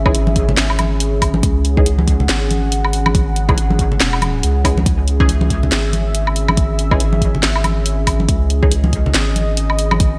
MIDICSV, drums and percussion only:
0, 0, Header, 1, 2, 480
1, 0, Start_track
1, 0, Key_signature, 4, "minor"
1, 0, Tempo, 428571
1, 1604, Time_signature, 4, 2, 24, 8
1, 11409, End_track
2, 0, Start_track
2, 0, Title_t, "Drums"
2, 64, Note_on_c, 9, 36, 116
2, 64, Note_on_c, 9, 77, 62
2, 163, Note_on_c, 9, 42, 83
2, 176, Note_off_c, 9, 36, 0
2, 176, Note_off_c, 9, 77, 0
2, 275, Note_off_c, 9, 42, 0
2, 302, Note_on_c, 9, 63, 95
2, 401, Note_on_c, 9, 42, 54
2, 403, Note_on_c, 9, 36, 64
2, 414, Note_off_c, 9, 63, 0
2, 513, Note_off_c, 9, 42, 0
2, 515, Note_off_c, 9, 36, 0
2, 545, Note_on_c, 9, 64, 95
2, 642, Note_on_c, 9, 38, 125
2, 642, Note_on_c, 9, 39, 95
2, 642, Note_on_c, 9, 42, 85
2, 657, Note_off_c, 9, 64, 0
2, 754, Note_off_c, 9, 38, 0
2, 754, Note_off_c, 9, 39, 0
2, 754, Note_off_c, 9, 42, 0
2, 783, Note_on_c, 9, 77, 54
2, 882, Note_off_c, 9, 77, 0
2, 882, Note_on_c, 9, 42, 53
2, 882, Note_on_c, 9, 77, 53
2, 892, Note_on_c, 9, 63, 72
2, 994, Note_off_c, 9, 42, 0
2, 994, Note_off_c, 9, 77, 0
2, 1004, Note_off_c, 9, 63, 0
2, 1124, Note_on_c, 9, 42, 83
2, 1236, Note_off_c, 9, 42, 0
2, 1364, Note_on_c, 9, 36, 65
2, 1365, Note_on_c, 9, 46, 92
2, 1365, Note_on_c, 9, 77, 63
2, 1476, Note_off_c, 9, 36, 0
2, 1477, Note_off_c, 9, 46, 0
2, 1477, Note_off_c, 9, 77, 0
2, 1499, Note_on_c, 9, 63, 106
2, 1604, Note_on_c, 9, 36, 122
2, 1604, Note_on_c, 9, 42, 77
2, 1611, Note_off_c, 9, 63, 0
2, 1716, Note_off_c, 9, 36, 0
2, 1716, Note_off_c, 9, 42, 0
2, 1845, Note_on_c, 9, 42, 52
2, 1957, Note_off_c, 9, 42, 0
2, 1986, Note_on_c, 9, 36, 113
2, 2085, Note_on_c, 9, 42, 79
2, 2098, Note_off_c, 9, 36, 0
2, 2197, Note_off_c, 9, 42, 0
2, 2223, Note_on_c, 9, 63, 104
2, 2325, Note_on_c, 9, 36, 68
2, 2325, Note_on_c, 9, 42, 52
2, 2335, Note_off_c, 9, 63, 0
2, 2437, Note_off_c, 9, 36, 0
2, 2437, Note_off_c, 9, 42, 0
2, 2464, Note_on_c, 9, 64, 88
2, 2566, Note_on_c, 9, 38, 127
2, 2566, Note_on_c, 9, 39, 93
2, 2566, Note_on_c, 9, 42, 83
2, 2576, Note_off_c, 9, 64, 0
2, 2678, Note_off_c, 9, 38, 0
2, 2678, Note_off_c, 9, 39, 0
2, 2678, Note_off_c, 9, 42, 0
2, 2806, Note_on_c, 9, 42, 54
2, 2810, Note_on_c, 9, 63, 62
2, 2918, Note_off_c, 9, 42, 0
2, 2922, Note_off_c, 9, 63, 0
2, 3046, Note_on_c, 9, 42, 80
2, 3158, Note_off_c, 9, 42, 0
2, 3187, Note_on_c, 9, 77, 55
2, 3284, Note_on_c, 9, 46, 88
2, 3299, Note_off_c, 9, 77, 0
2, 3396, Note_off_c, 9, 46, 0
2, 3426, Note_on_c, 9, 77, 83
2, 3428, Note_on_c, 9, 63, 88
2, 3525, Note_on_c, 9, 36, 124
2, 3525, Note_on_c, 9, 42, 75
2, 3538, Note_off_c, 9, 77, 0
2, 3540, Note_off_c, 9, 63, 0
2, 3637, Note_off_c, 9, 36, 0
2, 3637, Note_off_c, 9, 42, 0
2, 3766, Note_on_c, 9, 42, 50
2, 3878, Note_off_c, 9, 42, 0
2, 3906, Note_on_c, 9, 36, 115
2, 3907, Note_on_c, 9, 77, 67
2, 3909, Note_on_c, 9, 64, 82
2, 4006, Note_on_c, 9, 42, 79
2, 4018, Note_off_c, 9, 36, 0
2, 4019, Note_off_c, 9, 77, 0
2, 4021, Note_off_c, 9, 64, 0
2, 4118, Note_off_c, 9, 42, 0
2, 4149, Note_on_c, 9, 63, 99
2, 4244, Note_on_c, 9, 36, 65
2, 4246, Note_on_c, 9, 42, 51
2, 4261, Note_off_c, 9, 63, 0
2, 4356, Note_off_c, 9, 36, 0
2, 4358, Note_off_c, 9, 42, 0
2, 4386, Note_on_c, 9, 64, 84
2, 4485, Note_on_c, 9, 38, 127
2, 4485, Note_on_c, 9, 39, 90
2, 4485, Note_on_c, 9, 42, 78
2, 4498, Note_off_c, 9, 64, 0
2, 4597, Note_off_c, 9, 38, 0
2, 4597, Note_off_c, 9, 39, 0
2, 4597, Note_off_c, 9, 42, 0
2, 4627, Note_on_c, 9, 77, 55
2, 4719, Note_on_c, 9, 63, 64
2, 4726, Note_off_c, 9, 77, 0
2, 4726, Note_on_c, 9, 42, 51
2, 4726, Note_on_c, 9, 77, 57
2, 4831, Note_off_c, 9, 63, 0
2, 4838, Note_off_c, 9, 42, 0
2, 4838, Note_off_c, 9, 77, 0
2, 4965, Note_on_c, 9, 42, 79
2, 5077, Note_off_c, 9, 42, 0
2, 5204, Note_on_c, 9, 36, 64
2, 5207, Note_on_c, 9, 46, 95
2, 5207, Note_on_c, 9, 77, 67
2, 5316, Note_off_c, 9, 36, 0
2, 5319, Note_off_c, 9, 46, 0
2, 5319, Note_off_c, 9, 77, 0
2, 5348, Note_on_c, 9, 63, 96
2, 5445, Note_on_c, 9, 36, 117
2, 5446, Note_on_c, 9, 42, 78
2, 5460, Note_off_c, 9, 63, 0
2, 5557, Note_off_c, 9, 36, 0
2, 5558, Note_off_c, 9, 42, 0
2, 5685, Note_on_c, 9, 42, 53
2, 5797, Note_off_c, 9, 42, 0
2, 5825, Note_on_c, 9, 36, 111
2, 5924, Note_on_c, 9, 42, 77
2, 5937, Note_off_c, 9, 36, 0
2, 6036, Note_off_c, 9, 42, 0
2, 6059, Note_on_c, 9, 63, 100
2, 6164, Note_on_c, 9, 36, 62
2, 6165, Note_on_c, 9, 42, 51
2, 6171, Note_off_c, 9, 63, 0
2, 6276, Note_off_c, 9, 36, 0
2, 6277, Note_off_c, 9, 42, 0
2, 6308, Note_on_c, 9, 64, 86
2, 6405, Note_on_c, 9, 38, 123
2, 6405, Note_on_c, 9, 39, 87
2, 6405, Note_on_c, 9, 42, 78
2, 6420, Note_off_c, 9, 64, 0
2, 6517, Note_off_c, 9, 38, 0
2, 6517, Note_off_c, 9, 39, 0
2, 6517, Note_off_c, 9, 42, 0
2, 6641, Note_on_c, 9, 63, 66
2, 6644, Note_on_c, 9, 42, 49
2, 6753, Note_off_c, 9, 63, 0
2, 6756, Note_off_c, 9, 42, 0
2, 6884, Note_on_c, 9, 42, 78
2, 6996, Note_off_c, 9, 42, 0
2, 7025, Note_on_c, 9, 77, 55
2, 7123, Note_on_c, 9, 46, 95
2, 7137, Note_off_c, 9, 77, 0
2, 7235, Note_off_c, 9, 46, 0
2, 7263, Note_on_c, 9, 77, 86
2, 7267, Note_on_c, 9, 63, 88
2, 7362, Note_on_c, 9, 42, 78
2, 7363, Note_on_c, 9, 36, 110
2, 7375, Note_off_c, 9, 77, 0
2, 7379, Note_off_c, 9, 63, 0
2, 7474, Note_off_c, 9, 42, 0
2, 7475, Note_off_c, 9, 36, 0
2, 7603, Note_on_c, 9, 42, 54
2, 7715, Note_off_c, 9, 42, 0
2, 7743, Note_on_c, 9, 36, 110
2, 7744, Note_on_c, 9, 77, 63
2, 7842, Note_on_c, 9, 42, 80
2, 7855, Note_off_c, 9, 36, 0
2, 7856, Note_off_c, 9, 77, 0
2, 7954, Note_off_c, 9, 42, 0
2, 7980, Note_on_c, 9, 63, 93
2, 8082, Note_on_c, 9, 36, 61
2, 8084, Note_on_c, 9, 42, 51
2, 8092, Note_off_c, 9, 63, 0
2, 8194, Note_off_c, 9, 36, 0
2, 8196, Note_off_c, 9, 42, 0
2, 8228, Note_on_c, 9, 64, 80
2, 8321, Note_on_c, 9, 38, 122
2, 8321, Note_on_c, 9, 39, 89
2, 8321, Note_on_c, 9, 42, 81
2, 8340, Note_off_c, 9, 64, 0
2, 8433, Note_off_c, 9, 38, 0
2, 8433, Note_off_c, 9, 39, 0
2, 8433, Note_off_c, 9, 42, 0
2, 8462, Note_on_c, 9, 77, 55
2, 8558, Note_on_c, 9, 63, 63
2, 8559, Note_off_c, 9, 77, 0
2, 8559, Note_on_c, 9, 42, 52
2, 8559, Note_on_c, 9, 77, 54
2, 8670, Note_off_c, 9, 63, 0
2, 8671, Note_off_c, 9, 42, 0
2, 8671, Note_off_c, 9, 77, 0
2, 8800, Note_on_c, 9, 42, 83
2, 8912, Note_off_c, 9, 42, 0
2, 9039, Note_on_c, 9, 46, 97
2, 9039, Note_on_c, 9, 77, 65
2, 9041, Note_on_c, 9, 36, 59
2, 9151, Note_off_c, 9, 46, 0
2, 9151, Note_off_c, 9, 77, 0
2, 9153, Note_off_c, 9, 36, 0
2, 9182, Note_on_c, 9, 63, 87
2, 9280, Note_on_c, 9, 36, 113
2, 9280, Note_on_c, 9, 42, 84
2, 9294, Note_off_c, 9, 63, 0
2, 9392, Note_off_c, 9, 36, 0
2, 9392, Note_off_c, 9, 42, 0
2, 9521, Note_on_c, 9, 42, 54
2, 9633, Note_off_c, 9, 42, 0
2, 9662, Note_on_c, 9, 36, 107
2, 9761, Note_on_c, 9, 42, 85
2, 9774, Note_off_c, 9, 36, 0
2, 9873, Note_off_c, 9, 42, 0
2, 9898, Note_on_c, 9, 63, 100
2, 10001, Note_on_c, 9, 36, 60
2, 10001, Note_on_c, 9, 42, 53
2, 10010, Note_off_c, 9, 63, 0
2, 10113, Note_off_c, 9, 36, 0
2, 10113, Note_off_c, 9, 42, 0
2, 10149, Note_on_c, 9, 64, 94
2, 10241, Note_on_c, 9, 38, 117
2, 10241, Note_on_c, 9, 39, 93
2, 10241, Note_on_c, 9, 42, 85
2, 10261, Note_off_c, 9, 64, 0
2, 10353, Note_off_c, 9, 38, 0
2, 10353, Note_off_c, 9, 39, 0
2, 10353, Note_off_c, 9, 42, 0
2, 10481, Note_on_c, 9, 63, 67
2, 10483, Note_on_c, 9, 42, 53
2, 10593, Note_off_c, 9, 63, 0
2, 10595, Note_off_c, 9, 42, 0
2, 10721, Note_on_c, 9, 42, 85
2, 10833, Note_off_c, 9, 42, 0
2, 10861, Note_on_c, 9, 77, 50
2, 10961, Note_on_c, 9, 46, 101
2, 10973, Note_off_c, 9, 77, 0
2, 11073, Note_off_c, 9, 46, 0
2, 11102, Note_on_c, 9, 77, 78
2, 11106, Note_on_c, 9, 63, 98
2, 11200, Note_on_c, 9, 42, 86
2, 11202, Note_on_c, 9, 36, 112
2, 11214, Note_off_c, 9, 77, 0
2, 11218, Note_off_c, 9, 63, 0
2, 11312, Note_off_c, 9, 42, 0
2, 11314, Note_off_c, 9, 36, 0
2, 11409, End_track
0, 0, End_of_file